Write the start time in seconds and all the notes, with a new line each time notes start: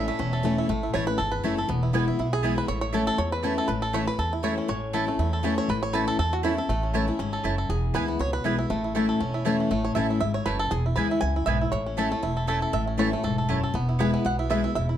Already playing: A2 C#4 E4
0.07 A3 C#4 E4 E5
0.19 E1 E2 C#4
0.33 A4
0.43 E3 A3 C#4 E4
0.58 E4
0.69 A1 A2 A3
0.83 E4
0.93 A1 E3 A3 C#4 E4 C#5 A5
1.07 C#4 E4 B4
1.18 G#1 E2 A4
1.31 B4
1.43 F#1 E3 A3 C#4 E4 C#5 A5
1.57 C#4 E4 A4
1.69 E1 E2 B3
1.83 E4
1.93 E3 G#3 B3 E4 B4 G#5
2.07 B3 E4
2.19 B1 B2 E4
2.33 G#4
2.43 E3 G#3 B3 E4 B4 G#5
2.58 B4
2.68 A1 A2 C#5
2.81 C#5
2.93 E3 A3 C#4 E4 A4 C#5 A5
3.07 A4
3.18 E2 C#5
3.32 B4
3.43 E3 A3 C#4 E4 C#5 A5
3.58 A4
3.68 A1 A2 B4
3.82 A4
3.93 E3 A3 C#4 E4 C#5 A5
4.07 C#4 E4 B4
4.19 E2 A4
4.33 E4
4.43 E3 A3 C#4 E4 C#5 A5
4.58 C#4
4.68 A1 A2 C#5
4.93 E3 A3 C#4 E4 A4 C#5 A5
5.07 A3 C#4 E4
5.19 E2 E4
5.33 A4
5.43 E3 A3 C#4 E4 C#5 A5
5.58 C#5
5.69 A1 A2 B4
5.83 C#5
5.93 E3 A3 C#4 E4 B4 C#5 A5
6.08 A4
6.19 E2 A4
6.33 F#4
6.43 E3 A3 C#4 E4 C#5 A5
6.57 C#4 E4 A4
6.69 A1 A2 A3
6.83 C#4
6.94 E3 A3 C#4 E4 C#5 A5
7.08 C#4 E4
7.19 G#1 G#2 C#4
7.33 A4
7.44 F#1 F#2 A3 E4 C#5 A5
7.58 A4
7.69 E1 E2 G#4
7.94 D2 E3 G#3 B3 E4 B4 G#5
8.08 B3
8.19 C#2 B2 C#5
8.33 B4
8.44 B1 E3 G#3 B3 E4 B4 G#5
8.58 B3 E4
8.70 A1 A2 A3
8.84 E4
8.95 E3 A3 C#4 E4 C#5 A5
9.09 A4
9.20 E1 C#4
9.34 E4
9.45 E3 A3 C#4 E4 C#5 A5
9.60 C#4
9.71 A1 A2 A3
9.85 C#5
9.95 A1 E3 A3 C#4 E4 C#5 E5 A5
10.10 E4
10.20 G#1 G#2 E5
10.34 C#5
10.46 F#1 F#2 A3 E4 B4 C#5 A5
10.59 A4
10.71 E1 E2 G#4
10.86 E4
10.96 D2 E3 G#3 B3 E4 B4 G#5
11.11 E4
11.21 C#2 F#2 G#5
11.36 E4
11.46 B1 G#2 B3 E4 B4 E5 G#5
11.61 E4
11.72 A1 A2 C#5
11.86 C#4
11.97 E3 A3 C#4 E4 A4 C#5 A5
12.11 A3 C#4 E4
12.23 E1 E2 E4
12.37 A4
12.47 E3 A3 C#4 E4 A4 C#5 A5
12.62 A4
12.73 A1 A2 E5
12.87 C#4
12.97 E3 A3 C#4 E4 C#5 A5
13.12 A3 C#4 E4
13.23 E1 G#2 A4
13.38 A4
13.49 F#2 A3 C#4 E4 C#5 A5
13.63 A4
13.74 E1 E2 B3
13.89 E4
13.99 E3 G#3 B3 E4 B4 G#5
14.14 B3
14.25 B1 B2 F#5
14.39 E4
14.50 E3 G#3 B3 E4 B4 E5 G#5
14.64 B3 E4
14.75 E1 E2 E5
14.89 E4